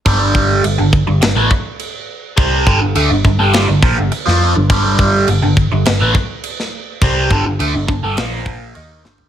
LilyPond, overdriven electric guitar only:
\new Staff \with { instrumentName = "Overdriven electric guitar" } { \clef bass \time 4/4 \key g \minor \tempo 4 = 103 <g, d g>4 <g, d>16 <g, d>8 <g, d>16 <g, d>16 <a, e>16 r4. | <c g c'>8 <g, d>16 <g, d>16 <d a>16 <g, d>16 <g, d>16 <g, d g>8 <g, d>16 <bes, f>16 <g, d>16 r16 <f c' f'>8 <g, d>16 | <g, d g>4 <g, d>16 <g, d>8 <g, d>16 <g, d>16 <a, e>16 r4. | <c g c'>8 <g, d>16 <g, d>16 <d a>16 <g, d>16 <g, d>16 <g, d>16 <bes, f bes>4 <ees bes ees'>8 <g, d g>8 | }